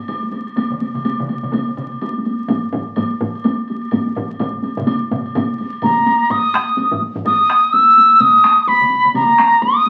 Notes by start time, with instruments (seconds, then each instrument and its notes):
0.08 taiko high, high woodblock
0.23 taiko high
0.32 taiko high, high woodblock
0.46 taiko high, high woodblock
0.56 taiko, taiko high, high woodblock
0.71 taiko mid, taiko high
0.81 taiko high, high woodblock
0.94 taiko mid, taiko high, high woodblock
1.05 taiko high, high woodblock
1.19 taiko mid, taiko high
1.29 taiko high, high woodblock
1.43 taiko mid, taiko high, high woodblock
1.52 taiko, taiko mid, taiko high, high woodblock
1.68 taiko mid, taiko high
1.77 taiko mid, taiko high, high woodblock
1.92 taiko high, high woodblock
2.01 taiko high, high woodblock
2.18 taiko high
2.25 taiko high, high woodblock
2.39 taiko high, high woodblock
2.48 taiko, taiko low-mid, taiko high, high woodblock
2.65 taiko high
2.73 taiko low-mid, taiko high, high woodblock
2.88 taiko high
2.96 taiko low-mid, taiko high, high woodblock
3.12 taiko high
3.21 taiko low-mid, taiko high, high woodblock
3.35 taiko high, high woodblock
3.44 taiko, taiko high, high woodblock
3.60 taiko high
3.68 taiko high, high woodblock
3.81 taiko high, high woodblock
3.91 taiko low-mid, taiko high, high woodblock
4.07 taiko high
4.15 taiko low-mid, taiko high, high woodblock
4.30 taiko high, high woodblock
4.39 taiko, taiko low-mid, taiko mid, taiko high, high woodblock
4.54 taiko high
4.62 taiko high, high woodblock
4.77 taiko low-mid, taiko mid, taiko high, high woodblock
4.87 taiko high, high woodblock
5.01 taiko high
5.11 taiko low-mid, taiko mid, taiko high, high woodblock
5.26 taiko high, high woodblock
5.35 taiko, taiko low-mid, taiko mid, taiko high, high woodblock
5.51 taiko high
5.58 taiko high, high woodblock
5.73 high woodblock
5.82 piccolo A#5, taiko low-mid, taiko mid, taiko high, high woodblock
5.98 taiko high
6.06 taiko high, high woodblock
6.20 taiko high, high woodblock
6.30 piccolo D#6, taiko, taiko low-mid, taiko high, high woodblock
6.45 taiko high
6.54 taiko rim, taiko high, high woodblock
6.68 taiko high
6.78 taiko high, high woodblock
6.92 taiko low-mid, taiko high
7.01 taiko high
7.16 taiko low-mid
7.25 piccolo D#6, taiko low-mid, taiko high, high woodblock
7.40 taiko high
7.49 taiko rim, taiko high
7.64 taiko high
7.72 piccolo E6, taiko high, high woodblock
7.88 taiko high
7.96 taiko high, high woodblock
8.12 taiko high
8.20 piccolo D#6, taiko, taiko mid, taiko high, high woodblock
8.35 taiko high
8.44 taiko rim, taiko high, high woodblock
8.58 taiko high
8.67 piccolo B5, taiko high, high woodblock
8.81 taiko mid, taiko high
8.90 taiko high
9.04 taiko mid, taiko high
9.14 piccolo A#5, taiko mid, taiko high, high woodblock
9.29 taiko high
9.38 taiko rim, taiko high
9.52 taiko high, high woodblock
9.62 piccolo D#6, taiko high, high woodblock
9.77 taiko high
9.85 taiko high, high woodblock